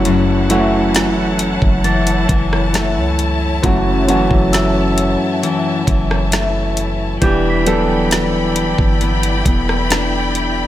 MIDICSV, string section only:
0, 0, Header, 1, 2, 480
1, 0, Start_track
1, 0, Tempo, 895522
1, 28, Time_signature, 4, 2, 24, 8
1, 5719, End_track
2, 0, Start_track
2, 0, Title_t, "String section"
2, 0, Program_c, 0, 48
2, 0, Note_on_c, 0, 64, 78
2, 0, Note_on_c, 0, 73, 72
2, 0, Note_on_c, 0, 78, 69
2, 0, Note_on_c, 0, 81, 85
2, 1689, Note_off_c, 0, 78, 0
2, 1705, Note_on_c, 0, 76, 70
2, 3845, Note_off_c, 0, 76, 0
2, 3846, Note_off_c, 0, 64, 0
2, 3847, Note_off_c, 0, 73, 0
2, 3847, Note_off_c, 0, 81, 0
2, 3868, Note_on_c, 0, 74, 72
2, 3868, Note_on_c, 0, 79, 70
2, 3868, Note_on_c, 0, 83, 86
2, 3869, Note_on_c, 0, 64, 79
2, 5719, Note_off_c, 0, 64, 0
2, 5719, Note_off_c, 0, 74, 0
2, 5719, Note_off_c, 0, 79, 0
2, 5719, Note_off_c, 0, 83, 0
2, 5719, End_track
0, 0, End_of_file